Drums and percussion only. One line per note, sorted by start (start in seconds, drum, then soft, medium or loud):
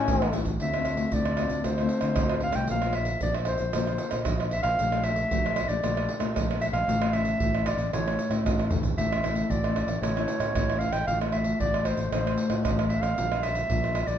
0.08 pandeiro loud
0.08 shaker medium
0.08 surdo loud
0.22 pandeiro soft
0.22 tamborim medium
0.22 shaker soft
0.33 pandeiro medium
0.33 shaker medium
0.45 pandeiro medium
0.45 shaker medium
0.45 surdo medium
0.60 pandeiro medium
0.60 shaker medium
0.60 surdo medium
0.74 pandeiro soft
0.74 tamborim medium
0.74 shaker soft
0.85 pandeiro medium
0.85 tamborim medium
0.85 shaker medium
0.85 surdo soft
0.97 pandeiro medium
0.97 shaker medium
1.12 pandeiro medium
1.12 shaker medium
1.12 surdo medium
1.25 pandeiro soft
1.25 tamborim medium
1.25 shaker soft
1.37 pandeiro medium
1.37 tamborim medium
1.49 pandeiro soft
1.49 shaker medium
1.49 surdo soft
1.64 pandeiro medium
1.64 tamborim medium
1.64 shaker medium
1.64 surdo medium
1.78 pandeiro soft
1.78 tamborim medium
1.78 shaker soft
1.89 pandeiro medium
2.01 pandeiro medium
2.01 tamborim medium
2.01 shaker medium
2.01 surdo soft
2.16 pandeiro medium
2.16 tamborim medium
2.16 shaker medium
2.16 surdo loud
2.29 pandeiro soft
2.29 tamborim medium
2.29 shaker soft
2.40 pandeiro medium
2.52 pandeiro medium
2.52 tamborim medium
2.52 shaker medium
2.52 surdo soft
2.67 pandeiro medium
2.67 shaker medium
2.67 surdo medium
2.82 pandeiro soft
2.82 tamborim medium
2.82 shaker soft
2.93 pandeiro medium
2.93 tamborim medium
2.93 surdo soft
3.05 pandeiro medium
3.05 shaker medium
3.21 pandeiro medium
3.21 shaker medium
3.21 surdo medium
3.34 pandeiro soft
3.34 tamborim medium
3.34 shaker soft
3.45 pandeiro medium
3.45 tamborim medium
3.58 pandeiro medium
3.58 shaker medium
3.58 surdo soft
3.73 pandeiro medium
3.73 tamborim medium
3.73 shaker medium
3.73 surdo medium
3.87 pandeiro soft
3.87 tamborim medium
3.87 shaker soft
3.98 pandeiro medium
4.11 pandeiro medium
4.11 tamborim medium
4.11 shaker medium
4.11 surdo soft
4.25 pandeiro medium
4.25 tamborim medium
4.25 shaker medium
4.25 surdo medium
4.40 pandeiro soft
4.40 tamborim medium
4.40 shaker soft
4.51 pandeiro medium
4.63 pandeiro medium
4.63 tamborim medium
4.63 shaker medium
4.63 surdo soft
4.79 pandeiro medium
4.79 shaker medium
4.79 surdo medium
4.92 pandeiro soft
4.92 tamborim medium
4.92 shaker soft
5.04 pandeiro medium
5.04 tamborim medium
5.04 surdo soft
5.16 pandeiro medium
5.16 shaker medium
5.31 pandeiro medium
5.31 shaker medium
5.31 surdo loud
5.46 pandeiro soft
5.46 tamborim medium
5.46 shaker soft
5.56 pandeiro medium
5.56 tamborim medium
5.69 pandeiro medium
5.69 shaker medium
5.69 surdo soft
5.84 pandeiro medium
5.84 tamborim medium
5.84 shaker medium
5.84 surdo medium
5.97 pandeiro soft
5.97 tamborim medium
5.97 shaker soft
6.09 pandeiro medium
6.20 pandeiro medium
6.20 tamborim medium
6.20 shaker medium
6.20 surdo soft
6.36 pandeiro medium
6.36 tamborim medium
6.36 shaker medium
6.36 surdo medium
6.51 pandeiro soft
6.51 tamborim medium
6.51 shaker soft
6.61 pandeiro medium
6.61 shaker medium
6.74 pandeiro medium
6.74 tamborim medium
6.74 shaker medium
6.74 surdo soft
6.89 pandeiro medium
6.89 shaker medium
6.89 surdo medium
7.02 pandeiro soft
7.02 tamborim medium
7.02 shaker soft
7.13 pandeiro medium
7.13 tamborim medium
7.13 surdo soft
7.25 pandeiro medium
7.25 shaker medium
7.40 pandeiro medium
7.40 shaker medium
7.40 surdo loud
7.55 pandeiro soft
7.55 tamborim medium
7.55 shaker soft
7.66 pandeiro medium
7.66 tamborim medium
7.66 shaker medium
7.78 pandeiro medium
7.78 shaker medium
7.78 surdo soft
7.93 pandeiro medium
7.93 tamborim medium
7.93 shaker medium
7.93 surdo medium
8.08 pandeiro soft
8.08 tamborim medium
8.08 shaker soft
8.19 pandeiro medium
8.19 shaker medium
8.31 pandeiro medium
8.31 tamborim medium
8.31 shaker medium
8.31 surdo soft
8.46 pandeiro medium
8.46 tamborim medium
8.46 shaker medium
8.46 surdo loud
8.59 pandeiro soft
8.59 tamborim medium
8.59 shaker soft
8.71 surdo medium
8.71 pandeiro medium
8.71 shaker medium
8.83 pandeiro medium
8.83 shaker medium
8.83 surdo medium
8.98 pandeiro medium
8.98 shaker medium
8.98 surdo medium
9.12 pandeiro soft
9.12 tamborim medium
9.12 shaker soft
9.24 pandeiro medium
9.24 tamborim medium
9.24 surdo soft
9.35 pandeiro medium
9.35 shaker medium
9.50 pandeiro medium
9.50 shaker medium
9.50 surdo medium
9.64 pandeiro soft
9.64 tamborim medium
9.64 shaker soft
9.76 pandeiro medium
9.76 tamborim medium
9.88 pandeiro medium
9.88 shaker medium
9.88 surdo soft
10.03 pandeiro medium
10.03 tamborim medium
10.03 shaker medium
10.03 surdo medium
10.17 pandeiro soft
10.17 tamborim medium
10.17 shaker soft
10.28 pandeiro medium
10.28 shaker medium
10.40 pandeiro medium
10.40 tamborim medium
10.40 shaker medium
10.40 surdo soft
10.55 pandeiro medium
10.55 tamborim medium
10.55 shaker medium
10.55 surdo loud
10.70 pandeiro soft
10.70 tamborim medium
10.70 shaker soft
10.81 pandeiro medium
10.93 pandeiro medium
10.93 tamborim medium
10.93 shaker medium
10.93 surdo soft
11.08 pandeiro medium
11.08 shaker medium
11.08 surdo medium
11.21 pandeiro soft
11.21 tamborim medium
11.21 shaker soft
11.32 pandeiro medium
11.32 tamborim medium
11.32 shaker medium
11.32 surdo soft
11.44 pandeiro medium
11.44 shaker medium
11.60 pandeiro medium
11.60 shaker medium
11.60 surdo medium
11.74 pandeiro soft
11.74 tamborim medium
11.74 shaker soft
11.85 pandeiro medium
11.85 tamborim medium
11.85 shaker medium
11.97 pandeiro medium
11.97 shaker medium
11.97 surdo soft
12.12 pandeiro medium
12.12 tamborim medium
12.12 shaker medium
12.12 surdo medium
12.27 pandeiro soft
12.27 tamborim medium
12.27 shaker soft
12.38 pandeiro medium
12.38 shaker medium
12.50 pandeiro medium
12.50 tamborim medium
12.50 shaker medium
12.50 surdo soft
12.65 pandeiro medium
12.65 tamborim medium
12.65 shaker medium
12.65 surdo loud
12.79 pandeiro soft
12.79 tamborim medium
12.79 shaker soft
12.90 pandeiro medium
13.03 pandeiro soft
13.03 tamborim medium
13.03 shaker medium
13.03 surdo soft
13.18 pandeiro medium
13.18 shaker medium
13.18 surdo medium
13.32 pandeiro soft
13.32 tamborim medium
13.32 shaker soft
13.43 pandeiro medium
13.43 tamborim medium
13.43 surdo soft
13.55 pandeiro medium
13.55 shaker medium
13.70 pandeiro medium
13.70 shaker medium
13.70 surdo medium
13.84 pandeiro soft
13.84 tamborim medium
13.84 shaker soft
13.95 pandeiro medium
13.95 tamborim medium
14.08 pandeiro medium
14.08 shaker medium
14.08 surdo soft